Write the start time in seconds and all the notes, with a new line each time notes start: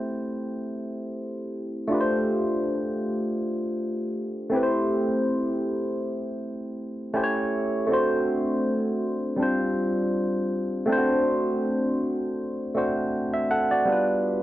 Already playing: A3 C4 E4 G4 C5
1.88 A3 D4 F4
1.92 G4 B4
2.01 C5
4.50 A3 C4 E4
4.55 G4 B4
4.63 C5
7.14 A3 C#4 E4 G4 C5
7.24 C#5
7.87 A3 C4 D4
7.92 F#4 C5
9.36 G3 C4 D4
9.41 F4 C5
10.86 A3 C4 D4
10.91 E4 C5
10.97 F#4
12.74 A3 C4 D4 F#4 C5
13.34 E5
13.51 A4 F#5
13.71 F#4 D5
13.85 G3 B3 D4
13.90 F4 B4